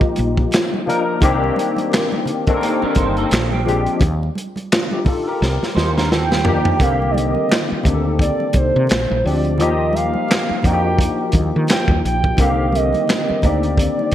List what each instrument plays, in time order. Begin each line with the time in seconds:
Already playing: tine electric piano F3 A#3 D#4 F4 G4, soft synth lead D#5
0.01 muted fretless electric bass stroke, kick, muted conga
0.16 fretless electric bass A#1, closed hi-hat, high conga
0.37 kick
0.51 snare, clap, closed hi-hat, muted conga
0.74 high conga
0.86 tine electric piano F3 A#3 D4 D#4 A#4, closed hi-hat, low conga
1.21 fretless electric bass C2, tine electric piano D#3 A#3 C4 D4 G4, kick, closed hi-hat, muted conga, low conga
1.44 muted conga
1.56 closed hi-hat, high conga
1.76 closed hi-hat, high conga
1.92 snare, clap, closed hi-hat, muted conga
2.12 muted conga, high conga
2.26 closed hi-hat, low conga
2.47 tine electric piano D#3 A#3 C4 D4 A4, kick, closed hi-hat
2.56 tine electric piano A#4
2.61 clean electric guitar A#3 G4, closed hi-hat, muted conga
2.82 clean electric guitar D4 A#4, muted fretless electric bass stroke, muted conga
2.95 fretless electric bass G1, clean electric guitar D#4 C5, kick, closed hi-hat, high conga
3.17 clean electric guitar C4 A4, closed hi-hat
3.30 fretless electric bass A#1, snare, clap, closed hi-hat, muted conga
3.52 clean electric guitar A#3 G4, muted conga, high conga
3.65 tine electric piano F3 G#3 C4 D4 G4, closed hi-hat, low conga
3.86 closed hi-hat
4.00 fretless electric bass D#2, kick, closed hi-hat, muted conga, low conga
4.23 muted conga
4.35 closed hi-hat, high conga
4.56 closed hi-hat, high conga
4.72 tine electric piano D4 F4, snare, clap, closed hi-hat
4.91 tine electric piano D#4 G4, muted conga, high conga
5.05 tine electric piano F4 A4, kick, open hi-hat, low conga
5.28 tine electric piano G4 A#4
5.41 fretless electric bass C2, snare, muted conga
5.62 muted fretless electric bass stroke, snare
5.75 fretless electric bass D#2, clean electric guitar D#4 C5, snare, high conga
5.97 clean electric guitar D4 A#4, snare
6.09 clean electric guitar C4 A4, soft synth lead G5, snare, muted conga
6.31 clean electric guitar A#3 G4, snare, muted conga, high conga
6.45 tine electric piano F3 A#3 D4 D#4 G4, floor tom, low conga
6.65 floor tom
6.79 fretless electric bass C2, tine electric piano D3 D#3 A#3 C4 G4, soft synth lead F5, kick, closed hi-hat, low conga
7.02 muted conga
7.10 soft synth lead D5, high conga
7.17 soft synth lead D#5, closed hi-hat
7.35 high conga
7.49 snare, clap, closed hi-hat, muted conga
7.70 muted fretless electric bass stroke, muted conga, high conga
7.83 fretless electric bass D2, tine electric piano A#3 C4 D4 D#4, kick, closed hi-hat, low conga
7.88 tine electric piano G4
7.94 tine electric piano A4
8.19 soft synth lead D5, kick, closed hi-hat, muted conga
8.40 muted conga
8.53 fretless electric bass C2, soft synth lead C5, kick, closed hi-hat, high conga
8.76 fretless electric bass C3
8.87 soft synth lead C5, closed hi-hat, muted conga
8.91 fretless electric bass A#1, snare, clap
9.10 fretless electric bass A#1, high conga
9.24 fretless electric bass D2, tine electric piano F3 G#3 C4 D4 G4, soft synth lead D5, open hi-hat
9.45 closed hi-hat
9.58 fretless electric bass D#2, tine electric piano F3 A#3 D#4 F4, soft synth lead D#5, closed hi-hat, muted conga, low conga
9.62 tine electric piano G4
9.93 soft synth lead F5, closed hi-hat, high conga
10.14 high conga
10.29 snare, clap, closed hi-hat, muted conga
10.49 muted fretless electric bass stroke, muted conga, high conga
10.63 fretless electric bass F2, tine electric piano F3 A#3 D4 D#4, soft synth lead G5, kick, closed hi-hat, low conga
10.67 tine electric piano F#4
10.73 tine electric piano G4
10.99 kick, closed hi-hat, muted conga
11.32 fretless electric bass D#2, kick, closed hi-hat, high conga
11.56 fretless electric bass D#3
11.67 soft synth lead G5, snare, clap, closed hi-hat, muted conga
11.88 fretless electric bass D#2, kick, high conga
12.05 fretless electric bass A#1, soft synth lead G5, closed hi-hat
12.24 kick
12.37 fretless electric bass C2, tine electric piano D3 D#3 A#3 C4, soft synth lead F5, kick, closed hi-hat, low conga
12.41 tine electric piano G4
12.72 soft synth lead D#5, closed hi-hat, high conga
12.93 closed hi-hat, high conga
13.08 snare, clap, closed hi-hat, muted conga
13.29 muted fretless electric bass stroke, muted conga, high conga
13.42 fretless electric bass D2, tine electric piano A#3 C4 D4 D#4 G4, soft synth lead D5, kick, closed hi-hat, low conga
13.63 closed hi-hat
13.78 kick, closed hi-hat, muted conga
13.99 muted conga
14.11 closed hi-hat